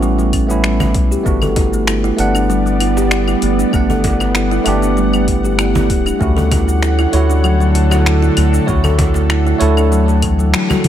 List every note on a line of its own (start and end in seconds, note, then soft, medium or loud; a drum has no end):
0.00 0.96 A1 loud
0.00 0.12 G3 medium
0.00 0.47 A3 medium
0.00 0.48 B3 medium
0.00 0.50 C#4 medium
0.00 0.51 E4 medium
0.00 0.47 F#4 medium
0.00 shaker medium
0.19 0.32 G3 medium
0.19 shaker soft
0.33 0.48 C#4 medium
0.33 kick medium
0.33 open hi-hat medium
0.33 claves medium
0.47 0.63 G3 medium
0.47 1.21 A3 medium
0.47 1.22 B3 medium
0.47 1.23 C#4 medium
0.47 1.23 E4 medium
0.47 shaker medium
0.64 0.79 G3 medium
0.64 finger snap medium
0.64 shaker medium
0.80 0.93 E4 medium
0.80 cajon bass medium
0.80 claves medium
0.80 shaker soft
0.94 1.17 B1 medium
0.94 1.10 G3 medium
0.94 kick loud
0.94 cajon slap soft
0.94 open hi-hat medium
1.11 1.24 G4 medium
1.11 shaker medium
1.24 2.11 G1 medium
1.24 6.16 G3 medium
1.24 2.14 A3 medium
1.24 1.35 A3 loud
1.24 2.15 B3 medium
1.24 6.16 B3 medium
1.24 2.15 D4 medium
1.24 6.16 D5 medium
1.24 10.88 F#5 medium
1.24 kick loud
1.24 shaker medium
1.28 2.16 F#4 medium
1.42 1.55 A4 loud
1.42 cajon bass medium
1.42 claves medium
1.42 shaker soft
1.56 1.72 E4 medium
1.56 cajon bass medium
1.56 kick loud
1.56 cajon slap medium
1.56 open hi-hat medium
1.73 1.87 A3 medium
1.73 shaker medium
1.87 2.02 E4 medium
1.87 finger snap medium
1.87 claves medium
1.87 shaker medium
2.04 2.17 E4 loud
2.04 shaker soft
2.16 3.35 G1 medium
2.16 3.69 A3 medium
2.16 2.28 A3 medium
2.16 3.69 B3 medium
2.16 3.70 D4 medium
2.16 3.71 F#5 medium
2.16 open hi-hat medium
2.35 2.48 D4 medium
2.35 claves medium
2.35 shaker medium
2.50 2.59 G3 medium
2.50 shaker medium
2.66 2.80 G3 medium
2.66 shaker soft
2.80 2.96 E4 medium
2.80 cajon slap soft
2.80 open hi-hat medium
2.80 claves medium
2.97 3.10 G4 medium
2.97 cajon slap medium
2.97 shaker medium
3.11 3.26 E4 medium
3.11 finger snap medium
3.11 shaker medium
3.28 3.41 E4 medium
3.28 claves medium
3.28 shaker soft
3.42 3.64 G1 loud
3.42 3.52 A3 medium
3.42 open hi-hat medium
3.59 3.72 D4 medium
3.59 shaker medium
3.71 4.59 G1 medium
3.71 4.62 A3 medium
3.71 3.83 A3 loud
3.71 4.62 B3 medium
3.71 4.63 D4 medium
3.71 kick loud
3.71 claves medium
3.71 shaker medium
3.76 4.64 F#5 medium
3.90 4.03 A4 loud
3.90 cajon bass medium
3.90 shaker soft
4.04 4.20 E4 medium
4.04 kick medium
4.04 cajon bass medium
4.04 cajon slap medium
4.04 open hi-hat medium
4.20 4.35 A3 medium
4.20 cajon slap medium
4.20 claves medium
4.20 shaker medium
4.35 4.50 E4 medium
4.35 finger snap medium
4.35 shaker medium
4.51 4.65 E4 loud
4.51 shaker soft
4.64 5.91 G1 medium
4.64 6.16 A3 medium
4.64 4.75 A3 medium
4.64 6.17 B3 medium
4.64 6.17 D4 medium
4.64 6.18 G4 loud
4.64 open hi-hat medium
4.64 claves medium
4.82 4.95 D4 medium
4.82 shaker medium
4.97 5.06 G3 medium
4.97 shaker medium
5.13 5.27 G3 medium
5.13 claves medium
5.13 shaker soft
5.28 5.44 E4 medium
5.28 kick medium
5.28 open hi-hat medium
5.44 5.57 G4 medium
5.44 shaker medium
5.59 5.74 E4 medium
5.59 finger snap medium
5.59 claves medium
5.59 shaker medium
5.75 5.88 E4 medium
5.75 cajon bass medium
5.75 shaker soft
5.90 6.12 D1 medium
5.90 5.99 A3 medium
5.90 kick loud
5.90 cajon slap soft
5.90 open hi-hat medium
6.06 6.19 D4 medium
6.06 claves medium
6.06 shaker medium
6.19 7.06 D2 medium
6.19 10.88 D3 medium
6.19 7.09 A3 medium
6.19 6.30 A3 loud
6.19 7.10 C#4 medium
6.19 7.10 E4 medium
6.19 7.11 F#4 medium
6.19 10.88 A4 medium
6.19 8.65 C#5 medium
6.19 kick loud
6.19 shaker medium
6.37 6.50 A4 loud
6.37 cajon bass medium
6.37 shaker soft
6.51 6.67 E4 medium
6.51 kick medium
6.51 cajon bass medium
6.51 cajon slap medium
6.51 open hi-hat medium
6.51 claves medium
6.68 6.82 A3 medium
6.68 shaker medium
6.82 6.97 E4 medium
6.82 finger snap loud
6.82 shaker medium
6.99 7.12 E4 loud
6.99 claves medium
6.99 shaker soft
7.12 8.30 D2 loud
7.12 8.64 A3 medium
7.12 7.23 A3 medium
7.12 8.65 E4 medium
7.12 8.64 C#5 medium
7.12 open hi-hat medium
7.16 8.66 F#4 medium
7.30 7.43 D4 medium
7.30 shaker medium
7.44 7.53 F#3 loud
7.44 claves medium
7.44 shaker medium
7.60 7.74 F#3 medium
7.60 shaker soft
7.74 7.91 E4 medium
7.74 cajon slap soft
7.74 open hi-hat medium
7.91 8.05 F#4 medium
7.91 cajon slap medium
7.91 claves medium
7.91 shaker medium
8.06 8.21 E4 medium
8.06 finger snap loud
8.06 shaker medium
8.22 8.36 E4 medium
8.22 shaker soft
8.37 8.59 D2 loud
8.37 8.46 A3 medium
8.37 open hi-hat medium
8.37 claves medium
8.53 8.66 D4 medium
8.53 shaker medium
8.66 9.54 D2 medium
8.66 9.56 A3 medium
8.66 8.77 A3 loud
8.66 9.58 E4 medium
8.66 9.58 F#4 medium
8.66 9.57 C#5 medium
8.66 kick loud
8.66 shaker medium
8.84 8.97 A4 loud
8.84 cajon bass medium
8.84 claves medium
8.84 shaker soft
8.99 9.15 E4 medium
8.99 cajon bass medium
8.99 kick medium
8.99 cajon slap medium
8.99 open hi-hat medium
9.14 9.29 A3 medium
9.14 cajon slap medium
9.14 shaker medium
9.30 9.45 E4 medium
9.30 finger snap loud
9.30 claves medium
9.30 shaker medium
9.47 9.60 E4 medium
9.47 shaker soft
9.58 10.54 D2 loud
9.58 10.88 A3 medium
9.58 9.70 A3 medium
9.58 10.88 E4 medium
9.58 10.88 A4 medium
9.58 10.88 C#5 medium
9.58 open hi-hat loud
9.77 9.90 D4 medium
9.77 claves medium
9.77 shaker medium
9.92 10.01 F#3 loud
9.92 shaker medium
10.08 10.22 F#3 medium
10.08 shaker soft
10.22 10.37 E3 medium
10.22 kick medium
10.22 open hi-hat medium
10.22 claves medium
10.39 10.52 F#3 medium
10.39 shaker medium
10.54 10.68 F#3 loud
10.54 finger snap loud
10.54 shaker medium
10.70 10.84 F#4 medium
10.70 cajon bass medium
10.70 high tom soft
10.70 claves medium
10.70 shaker soft
10.84 10.88 E4 medium
10.84 cajon slap soft
10.84 open hi-hat medium
10.84 mid tom medium